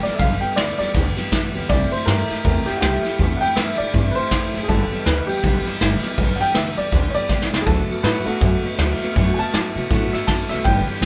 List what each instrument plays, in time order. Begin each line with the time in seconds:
0.03 steel-string acoustic guitar E3 G3 B3 G4, upright piano D5, muted upright bass stroke, snare, ride
0.15 upright piano E5
0.19 upright bass B1, steel-string acoustic guitar G2 D3 E3 G3 B3 G4, upright piano F5, kick, ride
0.41 steel-string acoustic guitar E3 G3 B3 G4, upright piano G5, muted upright bass stroke, ride
0.56 upright bass D2, steel-string acoustic guitar E3 G3 B3 G4, upright piano D5, snare, ride
0.78 upright bass E2, steel-string acoustic guitar G3 B3 G4, upright piano D5, snare, ride
0.82 steel-string acoustic guitar E3
0.94 upright bass D2, steel-string acoustic guitar G2 D3 E3 G3 B3 G4, kick, snare, ride
1.16 steel-string acoustic guitar E3 G3 B3 G4, muted upright bass stroke, snare, ride
1.32 upright bass B1, steel-string acoustic guitar E3 G3 B3 G4, kick, snare, ride
1.54 upright bass D2, steel-string acoustic guitar E3 G3 B3 G4, ride
1.69 upright bass C2, steel-string acoustic guitar C3 E3 A3 E4 G4, upright piano D5, kick, ride
1.92 steel-string acoustic guitar A3 E4 G4, upright piano C5, muted upright bass stroke, ride
2.06 upright bass G2, steel-string acoustic guitar E3 A3 E4 G4, upright piano A#4, snare, ride
2.29 steel-string acoustic guitar A3 E4 G4, muted upright bass stroke, snare, ride
2.44 upright bass E2, steel-string acoustic guitar C3 E3 A3 E4 G4, upright piano A#4, kick, ride
2.66 steel-string acoustic guitar A3 E4 G4, upright piano G4, muted upright bass stroke, snare, ride
2.77 steel-string acoustic guitar E3, upright piano F#4
2.81 upright bass C2, steel-string acoustic guitar A3 E4 G4, upright piano G4, snare, ride
3.03 steel-string acoustic guitar A3 E4 G4, muted upright bass stroke, snare, ride
3.19 upright bass E2, steel-string acoustic guitar C3 E3 A3 E4 G4, kick, ride
3.37 upright piano F#5
3.41 steel-string acoustic guitar A3 E4 G4, upright piano G5, muted upright bass stroke, ride
3.56 upright bass G2, steel-string acoustic guitar E3 A3 E4 G4, upright piano E5, snare, ride
3.78 upright bass A2, steel-string acoustic guitar A3 E4 G4, upright piano D5, ride
3.93 upright bass G2, steel-string acoustic guitar C3 E3 A3 E4 G4, kick, ride
4.11 upright piano B4
4.15 steel-string acoustic guitar A3 E4 G4, upright piano C5, muted upright bass stroke, ride
4.31 upright bass E2, steel-string acoustic guitar E3 A3 E4 G4, kick, snare, ride
4.54 upright bass A1, steel-string acoustic guitar A3 E4 G4, snare, ride
4.63 upright piano G#4
4.68 upright bass G1, steel-string acoustic guitar G2 D3 E3 G3 B3 G4, upright piano A4, kick, ride
4.91 steel-string acoustic guitar E3 G3 B3 G4, muted upright bass stroke, ride
5.05 upright bass D2, steel-string acoustic guitar E3 G3 B3 G4, upright piano B4, snare, ride
5.27 steel-string acoustic guitar E3 G3 B3 G4, upright piano G4, muted upright bass stroke, ride
5.43 upright bass B1, steel-string acoustic guitar G2 D3 E3 G3 B3 G4, kick, snare, ride
5.65 steel-string acoustic guitar E3 G3 B3 G4, muted upright bass stroke, snare, ride
5.80 upright bass G1, steel-string acoustic guitar E3 G3 B3 G4, snare, ride
6.02 steel-string acoustic guitar E3 G3 B3 G4, muted upright bass stroke, snare, ride
6.17 upright bass B1, steel-string acoustic guitar G2 D3 E3 G3 B3 G4, kick, ride
6.36 steel-string acoustic guitar G4, upright piano F#5
6.40 steel-string acoustic guitar E3 G3 B3, upright piano G5, muted upright bass stroke, ride
6.54 upright bass D2, steel-string acoustic guitar E3 G3 B3 G4, upright piano E5, snare, ride
6.77 upright bass E2, steel-string acoustic guitar E3 G3 B3 G4, upright piano D5, ride
6.92 upright bass D2, steel-string acoustic guitar G2 D3 E3 G3 B3 G4, kick, snare, ride
7.10 steel-string acoustic guitar G4, upright piano C#5
7.15 steel-string acoustic guitar E3 G3 B3, upright piano D5, muted upright bass stroke, ride
7.29 upright bass B1, steel-string acoustic guitar E3 G3 B3 G4, kick, snare
7.42 snare
7.52 upright bass C2, steel-string acoustic guitar E3 G3 B3 G4, snare
7.62 upright piano G#4
7.66 upright bass D2, steel-string acoustic guitar D3 F#3 A3 B3 F#4, upright piano A4, kick, ride
7.89 steel-string acoustic guitar A3 B3 F#4, muted upright bass stroke, ride
8.03 upright bass A2, steel-string acoustic guitar F#3 A3 B3 F#4, upright piano B4, snare, ride
8.26 upright piano A3 F#4, steel-string acoustic guitar A3 B3 F#4, muted upright bass stroke, ride
8.41 upright bass F#2, steel-string acoustic guitar D3 F#3 A3 B3 F#4, kick, ride
8.63 steel-string acoustic guitar A3 B3 F#4, muted upright bass stroke, ride
8.78 upright bass D2, steel-string acoustic guitar F#3 A3 B3 F#4, snare, ride
9.01 steel-string acoustic guitar A3 B3 F#4, muted upright bass stroke, snare, ride
9.16 upright bass F#2, steel-string acoustic guitar D3 F#3 A3 B3 F#4, kick, ride
9.34 upright piano G#5
9.38 steel-string acoustic guitar A3 B3 F#4, upright piano A5, muted upright bass stroke, ride
9.53 upright bass A2, steel-string acoustic guitar F#3 A3 B3 F#4, snare, ride
9.76 upright bass C3, steel-string acoustic guitar A3 B3 F#4, ride
9.90 upright bass A2, steel-string acoustic guitar D3 F#3 A3 B3 F#4, kick, snare, ride
10.12 steel-string acoustic guitar A3 B3 F#4, upright piano E5, muted upright bass stroke, snare, ride
10.27 upright bass F#2, steel-string acoustic guitar F#3 A3 B3 F#4, upright piano A5, kick, snare, ride
10.49 upright bass C2, steel-string acoustic guitar A3 B3 F#4, upright piano E5, snare, ride
10.64 upright bass G1, steel-string acoustic guitar G2 D3 E3 G3 B3 G4, upright piano G5, kick, ride
10.87 steel-string acoustic guitar E3 G3 B3 G4, muted upright bass stroke, ride
11.01 upright bass B1, steel-string acoustic guitar E3, snare, ride